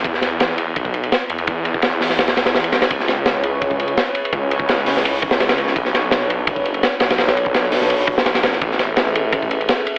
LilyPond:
<<
  \new Staff \with { instrumentName = "Detuned saw bass" } { \clef bass \time 4/4 \key cis \phrygian \tempo 4 = 168 e,2 b,,4 r8 e,8 | e,2. e,8 b,,8 | cis,2. r4 | cis,2~ cis,8 b,,16 cis,4~ cis,16 |
b,,2 fis,,4 r8 b,,8 | b,,2. b,,8 fis,,8 | a,,2. r4 | }
  \new DrumStaff \with { instrumentName = "Drums" } \drummode { \time 4/4 <bd cymr>16 sn16 <cymr sn>8 <cymr sn>8 cymr8 <bd cymr>16 bd16 cymr16 cymr16 <cymr sn>8 cymr16 cymr16 | <bd cymr>8 cymr16 bd16 <cymr sn>8 <hho sn>16 sn16 <cymr sn>16 <cymr sn>16 <cymr sn>16 <cymr sn>16 sn16 cymr16 <cymr sn>16 <cymr sn>16 | <bd cymr>16 sn16 <cymr sn>8 <cymr sn>8 cymr8 <bd cymr>16 bd16 cymr16 cymr16 <cymr sn>8 cymr16 cymr16 | <bd cymr>8 cymr16 bd16 <cymr sn>8 <hho sn>16 sn16 cymr8 <bd cymr>16 sn16 <cymr sn>16 <cymr sn>16 cymr16 sn16 |
<bd cymr>16 sn16 <cymr sn>8 <cymr sn>8 cymr8 <bd cymr>16 bd16 cymr16 cymr16 <cymr sn>8 <cymr sn>16 <cymr sn>16 | <cymr sn>16 <cymr sn>16 cymr16 bd16 <cymr sn>8 <hho sn>16 sn16 cymr8 <bd cymr>16 sn16 <cymr sn>16 <cymr sn>16 <cymr sn>16 sn16 | <bd cymr>16 sn16 <cymr sn>8 <cymr sn>8 cymr8 <bd cymr>16 bd16 cymr16 cymr16 <cymr sn>8 cymr8 | }
>>